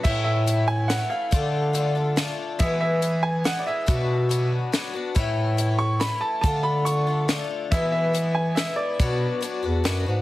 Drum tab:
CC |x-----|------|------|------|
HH |--x-x-|x-x-x-|x-x-x-|x-x-x-|
SD |----o-|----o-|----o-|----o-|
BD |o-----|o-----|o-----|o-----|

CC |------|------|------|------|
HH |x-x-x-|x-x-x-|x-x-x-|x-x-x-|
SD |----o-|----o-|----o-|----o-|
BD |o-----|o-----|o-----|o-----|